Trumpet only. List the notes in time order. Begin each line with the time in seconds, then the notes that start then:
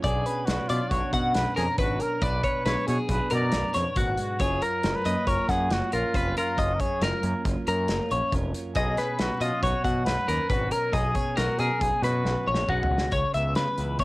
0.04 G#4
0.46 F#4
0.68 F4
0.89 F#4
1.34 B4
1.57 G#4
1.80 F#4
2.02 A#4
2.23 B4
2.67 C#5
2.88 C#5
3.11 B4
3.34 D5
4.20 F#4
4.41 G#4
4.63 A#4
4.96 B4
5.29 A#4
5.51 G#4
5.73 F#4
5.93 F4
6.38 F4
6.75 A#4
6.81 G#4
7.03 A#4
8.76 G#4
9.20 F#4
9.42 F4
9.63 F#4
10.05 B4
10.51 F#4
10.73 A#4
10.93 G#4
11.37 F#4
11.60 A#4
11.81 G#4
12.03 F#4